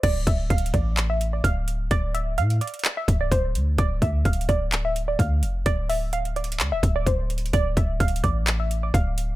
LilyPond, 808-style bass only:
\new Staff \with { instrumentName = "808-style bass" } { \clef bass \time 4/4 \key d \minor \tempo 4 = 128 d,,8 d,,8 d,,8 a,,4. d,,4 | d,,4 a,8 r4 c,,8 d,,8 d,8 | d,,8 d,8 d,,8 d,,4. d,8 f,,8 | d,,2 d,16 d,,16 d,,8 d,,4 |
d,,8 d,,8 d,,8 a,,4. d,,4 | }